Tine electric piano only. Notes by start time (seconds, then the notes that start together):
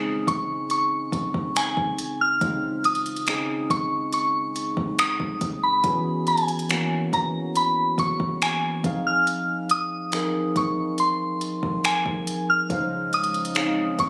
Already playing: C#3 G#3 C4 D#4 F4 G#4
2.41 C#3 G#3 C4 D#4 F4
3.27 C#3 G#3 C4 D#4 G#4
5.84 E3 B3 C#4 F#4 G#4
6.69 E3 A#3 B3 C#4 F#4
8.84 F3 C4 D#4 G#4 F5
10.12 F3 C4 D#4 G#4 A#4
12.69 C#3 C#4 D#4 C5 F5
13.55 C#3 C4 C#4 D#4 F5